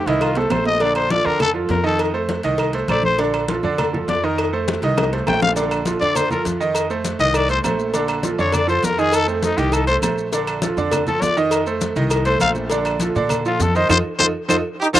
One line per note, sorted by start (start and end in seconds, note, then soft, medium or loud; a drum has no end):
0.06 0.48 C2 medium
0.06 0.32 D#3 medium
0.06 0.32 D#4 medium
0.06 0.23 E4 medium
0.06 0.32 D#5 medium
0.06 cowbell medium
0.06 high conga soft
0.06 high timbale medium
0.06 low agogo medium
0.21 0.39 F4 medium
0.21 cowbell loud
0.21 high conga soft
0.21 low agogo loud
0.21 claves medium
0.35 0.49 A3 medium
0.35 0.49 A4 medium
0.35 0.53 A4 medium
0.35 0.49 C5 medium
0.35 cowbell medium
0.35 high conga soft
0.35 low timbale loud
0.50 1.20 A#1 medium
0.50 0.76 A3 medium
0.50 0.76 A4 medium
0.50 0.66 C5 medium
0.50 0.76 C5 medium
0.50 cowbell medium
0.50 high conga medium
0.50 low timbale medium
0.50 low agogo loud
0.50 claves medium
0.65 0.83 D#5 loud
0.65 low timbale medium
0.80 1.06 D3 medium
0.80 1.06 D4 medium
0.80 1.06 D5 medium
0.80 0.96 D5 medium
0.80 cowbell loud
0.80 high conga soft
0.80 low agogo medium
0.95 1.13 C5 medium
0.95 cowbell medium
0.95 high conga soft
0.95 low agogo loud
0.95 claves medium
1.10 1.23 F3 medium
1.10 1.23 F4 medium
1.10 1.23 A4 medium
1.10 1.27 D5 loud
1.10 cowbell medium
1.10 high conga medium
1.24 1.67 F2 medium
1.24 1.49 D3 medium
1.24 1.49 D4 medium
1.24 1.41 A#4 medium
1.24 1.49 D5 medium
1.24 high conga soft
1.40 1.51 A4 medium
1.40 cowbell loud
1.40 high conga soft
1.40 low conga medium
1.40 low agogo loud
1.40 claves medium
1.53 1.79 F3 medium
1.53 1.79 F4 medium
1.53 1.79 A4 medium
1.53 high conga soft
1.69 2.39 F2 medium
1.69 1.84 A#4 medium
1.69 cowbell medium
1.69 high conga medium
1.69 low timbale medium
1.69 low agogo medium
1.83 2.09 D#3 medium
1.83 2.09 D#4 medium
1.83 2.00 A4 medium
1.83 2.09 D#5 medium
1.99 cowbell loud
1.99 high conga soft
1.99 low agogo loud
1.99 claves medium
2.13 2.38 A3 medium
2.13 2.39 A4 medium
2.13 2.39 C5 medium
2.13 high conga soft
2.29 cowbell medium
2.29 high conga medium
2.29 low agogo medium
2.43 2.86 C2 medium
2.43 2.69 D#3 medium
2.43 2.69 D#4 medium
2.43 2.69 D#5 medium
2.43 cowbell medium
2.43 high conga soft
2.43 low agogo medium
2.58 cowbell loud
2.58 high conga soft
2.58 low agogo loud
2.58 claves medium
2.73 2.86 A3 medium
2.73 2.87 A4 medium
2.73 2.87 C5 medium
2.73 cowbell medium
2.73 high conga soft
2.88 3.58 A#1 loud
2.88 3.14 A3 medium
2.88 3.14 A4 medium
2.88 3.14 C5 medium
2.88 3.04 D5 medium
2.88 cowbell medium
2.88 high conga medium
2.88 low agogo loud
2.88 claves medium
3.03 3.19 C5 loud
3.03 high conga medium
3.19 3.43 D3 medium
3.19 3.44 D4 medium
3.19 3.44 D5 medium
3.19 cowbell loud
3.19 low agogo medium
3.34 cowbell medium
3.34 high conga soft
3.34 low agogo loud
3.34 claves medium
3.48 3.61 F3 medium
3.48 3.61 F4 medium
3.48 3.62 A4 medium
3.48 cowbell medium
3.48 high conga loud
3.63 4.05 F2 loud
3.63 3.88 D3 loud
3.63 3.88 D4 medium
3.63 3.88 D5 medium
3.63 high conga soft
3.78 cowbell loud
3.78 high conga soft
3.78 low conga medium
3.78 low agogo loud
3.78 claves medium
3.93 4.18 F3 medium
3.93 4.18 F4 medium
3.93 4.18 A4 medium
3.93 high conga soft
3.93 low conga medium
4.08 4.77 F2 medium
4.08 4.26 D5 medium
4.08 cowbell medium
4.08 high conga medium
4.08 low timbale medium
4.08 low agogo medium
4.24 4.48 D#3 medium
4.24 4.48 D#4 medium
4.24 4.39 A#4 medium
4.24 4.48 D#5 medium
4.38 cowbell loud
4.38 high conga soft
4.38 low agogo loud
4.38 claves medium
4.53 4.77 A3 medium
4.53 4.77 A4 medium
4.53 4.77 C5 medium
4.53 high conga soft
4.68 cowbell medium
4.68 high bongo medium
4.68 high conga loud
4.68 low agogo medium
4.82 5.24 C2 medium
4.82 5.07 D#3 medium
4.82 5.08 D#4 loud
4.82 5.08 D#5 medium
4.82 cowbell medium
4.82 high conga soft
4.82 low agogo medium
4.97 cowbell loud
4.97 low bongo loud
4.97 high conga soft
4.97 low agogo loud
4.97 claves medium
5.12 5.25 A3 medium
5.12 5.25 A4 medium
5.12 5.25 C5 medium
5.12 cowbell medium
5.12 high conga soft
5.27 5.96 A#1 loud
5.27 5.51 A3 medium
5.27 5.51 A4 medium
5.27 5.52 C5 medium
5.27 5.41 G5 medium
5.27 cowbell medium
5.27 low bongo medium
5.27 high conga medium
5.27 low timbale medium
5.27 low agogo loud
5.27 claves medium
5.42 5.51 F5 loud
5.42 low bongo loud
5.42 high conga medium
5.56 5.81 D3 medium
5.56 5.81 D4 medium
5.56 5.81 D5 medium
5.56 cowbell loud
5.56 high conga soft
5.56 low agogo medium
5.56 maracas medium
5.71 cowbell medium
5.71 high conga soft
5.71 low agogo loud
5.71 claves medium
5.71 maracas soft
5.86 5.98 F3 medium
5.86 5.99 F4 medium
5.86 5.99 A4 medium
5.86 cowbell medium
5.86 high conga medium
5.86 maracas medium
6.01 6.42 F2 medium
6.01 6.26 D3 medium
6.01 6.26 D4 medium
6.01 6.18 D5 medium
6.01 6.26 D5 medium
6.01 high conga soft
6.01 maracas soft
6.15 6.31 C5 medium
6.15 cowbell loud
6.15 high conga soft
6.15 low conga medium
6.15 low agogo loud
6.15 claves medium
6.15 maracas medium
6.30 6.55 F3 medium
6.30 6.55 F4 medium
6.30 6.55 A4 medium
6.30 6.45 A#4 medium
6.30 high conga soft
6.30 low conga medium
6.30 maracas soft
6.45 7.14 F2 loud
6.45 cowbell medium
6.45 high conga medium
6.45 low agogo medium
6.45 maracas medium
6.60 6.85 D#3 medium
6.60 6.85 D#4 medium
6.60 6.85 D#5 medium
6.60 maracas soft
6.75 cowbell loud
6.75 high conga soft
6.75 low agogo loud
6.75 claves medium
6.75 maracas medium
6.90 7.14 A3 medium
6.90 7.15 A4 medium
6.90 7.15 C5 medium
6.90 high conga soft
6.90 maracas soft
7.05 cowbell medium
7.05 high conga medium
7.05 low agogo medium
7.05 maracas medium
7.19 7.61 C2 medium
7.19 7.44 D#3 medium
7.19 7.44 D#4 medium
7.19 7.38 D#5 loud
7.19 7.45 D#5 medium
7.19 cowbell medium
7.19 high conga soft
7.19 low agogo medium
7.19 maracas soft
7.34 7.51 D5 medium
7.34 cowbell loud
7.34 high conga soft
7.34 low agogo loud
7.34 claves medium
7.34 maracas medium
7.49 7.62 A3 medium
7.49 7.62 A4 medium
7.49 7.62 C5 medium
7.49 7.60 C5 medium
7.49 cowbell medium
7.49 high conga soft
7.49 maracas soft
7.64 8.33 A#1 medium
7.64 7.89 A3 medium
7.64 7.90 A4 medium
7.64 7.90 C5 medium
7.64 cowbell medium
7.64 high conga medium
7.64 low timbale medium
7.64 low agogo loud
7.64 claves medium
7.64 maracas medium
7.79 maracas soft
7.94 8.19 D3 medium
7.94 8.19 D4 medium
7.94 8.19 D5 medium
7.94 cowbell loud
7.94 high conga soft
7.94 low agogo medium
7.94 maracas medium
8.08 cowbell medium
8.08 high conga soft
8.08 low agogo loud
8.08 claves medium
8.08 maracas soft
8.23 8.36 F3 medium
8.23 8.36 F4 medium
8.23 8.37 A4 medium
8.23 cowbell medium
8.23 high conga medium
8.23 maracas medium
8.38 8.81 F2 loud
8.38 8.63 D3 medium
8.38 8.63 D4 medium
8.38 8.56 C#5 medium
8.38 8.63 D5 medium
8.38 high conga soft
8.38 maracas soft
8.52 8.69 D5 loud
8.52 cowbell loud
8.52 high conga soft
8.52 low conga medium
8.52 low agogo loud
8.52 claves medium
8.52 maracas medium
8.68 8.92 F3 medium
8.68 8.92 F4 medium
8.68 8.93 A4 medium
8.68 8.86 C5 medium
8.68 high conga soft
8.68 maracas soft
8.83 9.52 F2 medium
8.83 9.01 A#4 medium
8.83 cowbell medium
8.83 high conga medium
8.83 low timbale medium
8.83 low agogo medium
8.83 maracas medium
8.98 9.22 D#3 medium
8.98 9.23 D#4 medium
8.98 9.17 G#4 loud
8.98 9.23 D#5 medium
8.98 maracas soft
9.12 9.29 A4 loud
9.12 cowbell loud
9.12 high conga soft
9.12 low agogo loud
9.12 claves medium
9.12 maracas medium
9.27 9.52 A3 medium
9.27 9.45 C4 medium
9.27 9.52 A4 medium
9.27 9.52 C5 medium
9.27 high conga soft
9.27 maracas soft
9.42 9.60 D#4 medium
9.42 cowbell medium
9.42 high conga medium
9.42 low agogo medium
9.42 maracas medium
9.57 9.99 C2 medium
9.57 9.82 D#3 medium
9.57 9.82 D#4 medium
9.57 9.75 G4 medium
9.57 9.82 D#5 medium
9.57 cowbell medium
9.57 high conga soft
9.57 low agogo medium
9.57 maracas soft
9.72 9.87 A4 medium
9.72 cowbell loud
9.72 high conga soft
9.72 low agogo loud
9.72 claves medium
9.72 maracas medium
9.87 10.00 A3 medium
9.87 10.00 A4 medium
9.87 9.96 C5 medium
9.87 10.00 C5 medium
9.87 cowbell medium
9.87 high conga soft
9.87 maracas soft
10.02 10.71 A#1 medium
10.02 10.27 A3 medium
10.02 10.27 A4 medium
10.02 10.27 C5 medium
10.02 cowbell medium
10.02 high conga medium
10.02 low timbale medium
10.02 low agogo loud
10.02 claves medium
10.02 maracas medium
10.18 maracas soft
10.32 10.57 D3 medium
10.32 10.57 D4 medium
10.32 10.57 D5 medium
10.32 cowbell loud
10.32 high conga soft
10.32 low agogo medium
10.32 maracas medium
10.47 cowbell medium
10.47 high conga soft
10.47 low agogo loud
10.47 claves medium
10.47 maracas soft
10.62 10.75 F3 medium
10.62 10.75 F4 medium
10.62 10.75 A4 medium
10.62 cowbell medium
10.62 high conga loud
10.62 maracas medium
10.77 11.18 F2 medium
10.77 11.02 D3 medium
10.77 11.02 D4 medium
10.77 11.02 D5 medium
10.77 high conga soft
10.77 maracas soft
10.91 cowbell loud
10.91 high conga soft
10.91 low conga medium
10.91 low agogo loud
10.91 claves medium
10.91 maracas medium
11.07 11.31 F3 medium
11.07 11.32 F4 medium
11.07 11.32 A4 medium
11.07 11.23 A4 medium
11.07 high conga soft
11.07 low conga medium
11.07 maracas soft
11.22 11.91 F2 medium
11.22 11.37 D5 loud
11.22 cowbell medium
11.22 high conga medium
11.22 low timbale medium
11.22 low agogo medium
11.22 maracas medium
11.37 11.61 D#3 loud
11.37 11.61 D#4 medium
11.37 11.62 D#5 medium
11.37 maracas soft
11.51 cowbell loud
11.51 high conga soft
11.51 low agogo loud
11.51 claves medium
11.51 maracas medium
11.66 11.91 A3 medium
11.66 11.91 A4 medium
11.66 11.91 C5 medium
11.66 high conga soft
11.66 maracas soft
11.81 cowbell medium
11.81 high conga medium
11.81 low agogo medium
11.81 maracas medium
11.96 12.38 C2 loud
11.96 12.21 D#3 medium
11.96 12.21 D#4 medium
11.96 12.21 D#5 medium
11.96 cowbell medium
11.96 high conga soft
11.96 low agogo medium
11.96 maracas soft
12.10 cowbell loud
12.10 high conga soft
12.10 low agogo loud
12.10 claves medium
12.10 maracas medium
12.25 12.38 A3 medium
12.25 12.38 A4 medium
12.25 12.40 C5 medium
12.25 12.39 C5 medium
12.25 cowbell medium
12.25 high conga soft
12.25 maracas soft
12.40 13.10 A#1 loud
12.40 12.65 A3 medium
12.40 12.65 A4 medium
12.40 12.65 C5 medium
12.40 12.50 F5 loud
12.40 cowbell medium
12.40 high conga medium
12.40 low agogo loud
12.40 claves medium
12.40 maracas medium
12.55 high conga medium
12.55 maracas soft
12.70 12.95 D3 medium
12.70 12.95 D4 medium
12.70 12.96 D5 medium
12.70 cowbell loud
12.70 high conga soft
12.70 low agogo medium
12.70 maracas medium
12.85 cowbell medium
12.85 high conga soft
12.85 low agogo loud
12.85 claves medium
12.85 maracas soft
13.00 13.13 F3 medium
13.00 13.13 F4 medium
13.00 13.13 A4 medium
13.00 cowbell medium
13.00 high conga medium
13.00 maracas medium
13.15 13.57 A#2 medium
13.15 13.40 D3 medium
13.15 13.40 D4 medium
13.15 13.40 D5 loud
13.15 high conga soft
13.15 maracas soft
13.29 cowbell loud
13.29 high conga soft
13.29 low conga medium
13.29 low agogo loud
13.29 claves medium
13.29 maracas medium
13.45 13.70 F3 medium
13.45 13.70 F4 medium
13.45 13.64 F4 medium
13.45 13.70 A4 medium
13.45 high conga soft
13.45 maracas soft
13.60 13.88 F2 medium
13.60 13.77 A4 medium
13.60 cowbell medium
13.60 high conga medium
13.60 low timbale medium
13.60 low agogo medium
13.60 maracas medium
13.75 13.87 D#3 medium
13.75 13.88 D#4 medium
13.75 13.90 C5 loud
13.75 13.88 D#5 loud
13.75 maracas soft
13.89 14.01 F2 loud
13.89 13.99 D#4 loud
13.89 13.99 F4 loud
13.89 13.99 A4 loud
13.89 13.98 C5 loud
13.89 cowbell loud
13.89 high conga loud
13.89 high timbale loud
13.89 claves loud
13.89 maracas loud
14.19 14.31 F2 loud
14.19 14.29 D#4 medium
14.19 14.29 F4 medium
14.19 14.29 A4 medium
14.19 14.26 C5 loud
14.19 cowbell loud
14.19 high conga medium
14.19 high timbale loud
14.19 claves medium
14.19 maracas loud
14.48 14.61 F2 medium
14.48 14.58 D#4 loud
14.48 14.58 F4 medium
14.48 14.59 A4 medium
14.48 14.56 C5 medium
14.48 cowbell loud
14.48 high conga loud
14.48 high timbale loud
14.48 claves loud
14.48 maracas loud
14.80 14.87 D#4 medium
14.80 14.87 G4 medium
14.93 15.00 F2 loud
14.93 15.00 D4 medium
14.93 15.00 D#4 loud
14.93 15.00 F4 loud
14.93 15.00 A4 loud
14.93 15.00 C5 medium
14.93 cowbell loud
14.93 high conga loud
14.93 high timbale loud
14.93 claves loud
14.93 maracas loud